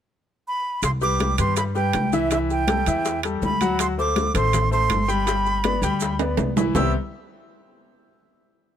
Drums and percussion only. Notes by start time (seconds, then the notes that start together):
0.82 high bongo, high conga, high timbale, maracas
1.01 high bongo, high conga, maracas
1.19 high bongo, high conga, high timbale, maracas
1.38 high conga, low conga, high timbale, maracas
1.56 high bongo, high conga, high timbale, maracas
1.75 high bongo, high conga, maracas
1.93 high bongo, low bongo, high conga, high timbale, maracas
2.13 high bongo, high conga, maracas
2.31 high bongo, high conga, high timbale, maracas
2.49 high bongo, high conga, maracas
2.68 high bongo, high conga, high timbale, maracas
2.86 high timbale, maracas
3.05 high bongo, high conga, maracas
3.23 high bongo, high conga, high timbale, maracas
3.42 high bongo, low bongo, high conga, maracas
3.61 high bongo, high conga, high timbale, maracas
3.79 high bongo, high conga, high timbale, maracas
3.99 high bongo, high conga, maracas
4.16 high bongo, high conga, high timbale, maracas
4.35 high conga, low conga, high timbale, maracas
4.53 high bongo, high conga, low conga, high timbale, maracas
4.72 high bongo, high conga, maracas
4.90 high bongo, low bongo, high conga, high timbale, maracas
5.09 high bongo, maracas
5.27 high bongo, high conga, high timbale, maracas
5.46 high bongo, high conga, maracas
5.64 high bongo, high conga, high timbale, maracas
5.83 high timbale, maracas
6.00 high bongo, high conga, maracas
6.19 high bongo, high conga, high timbale, maracas
6.37 high bongo, low bongo, high conga, high timbale, maracas
6.56 high bongo, high conga, low timbale, maracas
6.75 low bongo, low conga, low timbale, maracas